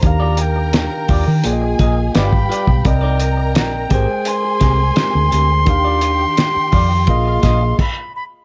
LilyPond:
<<
  \new Staff \with { instrumentName = "Flute" } { \time 4/4 \key ees \major \tempo 4 = 85 bes''8 g''8 g''4. r8 b''4 | g''4 g''4 c'''2~ | c'''2. b''8 b''8 | }
  \new Staff \with { instrumentName = "Violin section" } { \time 4/4 \key ees \major <bes' bes''>2 <aes' aes''>4 <g' g''>4 | <bes' bes''>4. <aes' aes''>2~ <aes' aes''>8 | <g' g''>2 <f' f''>4 r4 | }
  \new Staff \with { instrumentName = "Tine electric piano" } { \time 4/4 \key ees \major <ees d' g' f''>2 <bes f' aes' d'' ees''>4 <g g' b' ees'' f''>4 | <c' bes' d'' ees''>4. <aes aes' bes' c''>2~ <aes aes' bes' c''>8 | <ees d' g' f''>2 <bes f' aes' ees''>4 r4 | }
  \new Staff \with { instrumentName = "Clean electric guitar" } { \time 4/4 \key ees \major r16 <f' g' d''>16 r4 <f' g' d''>16 r8. <aes' bes' ees''>16 r16 <f' b' d''>16 r16 <f' b' d''>16 r16 | r16 <ees' bes' d''>16 r4 <c' g' bes'>16 r8. <c' g' bes'>16 r16 <c' g' bes'>16 r16 <c' g' bes'>16 r16 | r16 <f' g' d''>16 r4 <f' g' d''>16 r8. <f' aes' ees''>16 r4 r16 | }
  \new Staff \with { instrumentName = "Fingered electric bass" } { \clef bass \time 4/4 \key ees \major ees,4~ ees,16 r16 ees,16 ees16 bes,,8 bes,,8 g,,16 aes,,16 r16 b,,16 | c,4 bes,,8 aes,,16 r8. c,8 r16 d,16 d,8 | ees,4 r8 f,8 bes,,8 bes,,8 r4 | }
  \new DrumStaff \with { instrumentName = "Drums" } \drummode { \time 4/4 <hh bd>8 hh8 <hh sn>8 <hho bd>8 hh8 <hh bd>8 <hh sn>16 bd16 hh16 bd16 | <hh bd>8 hh8 <hh sn>8 <hh bd>8 hh8 <hh bd sn>8 <hh sn>8 hh8 | <hh bd>8 hh8 <hh sn>8 <hho bd>8 <hh bd>8 <hh bd sn>8 <cymc bd>4 | }
>>